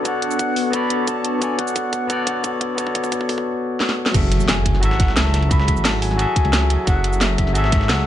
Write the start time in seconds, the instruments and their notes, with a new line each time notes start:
Already playing: tine electric piano B3 F#4 A4 C#5 D5, analog synth pad B3 D4 A4 C#6
0.02 tine electric piano B3 F#4 A4, flute F#5, kick, closed hi-hat, shaker
0.06 tine electric piano C#5 D5
0.22 closed hi-hat
0.31 shaker
0.39 kick, closed hi-hat, shaker
0.56 open hi-hat, shaker
0.71 tine electric piano B3 F#4 A4 C#5, flute B5, kick, closed hi-hat, shaker
0.76 tine electric piano D5
0.90 closed hi-hat
1.07 flute A5, kick, closed hi-hat, shaker
1.25 closed hi-hat
1.39 tine electric piano B3 F#4 A4 C#5, flute G#5, kick, closed hi-hat, shaker
1.44 tine electric piano D5
1.59 flute F#5, kick, closed hi-hat
1.67 shaker
1.76 kick, closed hi-hat, shaker
1.93 kick, closed hi-hat, shaker
2.07 tine electric piano B3 F#4 A4 C#5, kick, closed hi-hat, shaker
2.12 tine electric piano D5
2.27 kick, closed hi-hat
2.44 kick, closed hi-hat, shaker
2.61 kick, closed hi-hat
2.75 tine electric piano B3 F#4 A4 C#5, kick, closed hi-hat, shaker
2.81 tine electric piano D5
2.87 kick
2.95 kick, closed hi-hat
3.04 kick, shaker
3.12 kick, closed hi-hat, shaker
3.21 kick
3.29 kick, open hi-hat, shaker
3.38 kick
3.80 snare
3.89 snare
4.06 snare
4.12 detuned saw bass F#1, tine electric piano F#3 F#4 G#4 A4, kick, closed hi-hat, crash, ride, impact, shaker
4.17 tine electric piano E5
4.32 closed hi-hat, ride, shaker
4.40 shaker
4.48 flute G#5, snare, closed hi-hat, ride, shaker
4.66 kick, closed hi-hat, ride
4.74 flute G#5, snare
4.80 detuned saw bass G#1, tine electric piano F#3 E4 F#4 A4, flute F#5, closed hi-hat, ride, shaker
4.85 tine electric piano E5
4.91 snare
5.00 kick, snare, closed hi-hat, ride
5.08 snare
5.16 detuned saw bass C#2, flute A5, snare, closed hi-hat, ride, shaker
5.25 snare
5.34 snare, closed hi-hat, ride, shaker
5.42 ride
5.48 tine electric piano F#3 F#4 G#4 A4, flute B5, kick, closed hi-hat, ride, shaker
5.53 tine electric piano E5
5.60 snare
5.68 kick, closed hi-hat, ride, shaker
5.76 detuned saw bass G#1, shaker
5.85 flute A5, snare, closed hi-hat, open hi-hat, shaker
6.02 flute G#5, open hi-hat, ride
6.11 snare
6.16 tine electric piano F#3 F#4 G#4 A4, closed hi-hat, ride, shaker
6.22 tine electric piano E5
6.36 kick, closed hi-hat, ride
6.45 detuned saw bass C#2, ride
6.53 snare, closed hi-hat, ride, shaker
6.70 closed hi-hat, ride, shaker
6.84 detuned saw bass F#1, tine electric piano F#3 F#4 G#4 A4, flute F#5, kick, closed hi-hat, ride, shaker
6.90 tine electric piano E5
7.04 closed hi-hat, ride, shaker
7.13 shaker
7.21 flute E5, snare, closed hi-hat, ride, shaker
7.38 kick, closed hi-hat, ride
7.47 snare
7.53 detuned saw bass G#1, tine electric piano F#3 F#4 G#4, flute E5, closed hi-hat, ride, shaker
7.57 tine electric piano A4 E5
7.64 snare
7.72 kick, snare, closed hi-hat, ride
7.81 snare
7.89 detuned saw bass C#2, flute F#5, snare, closed hi-hat, ride, shaker
7.98 snare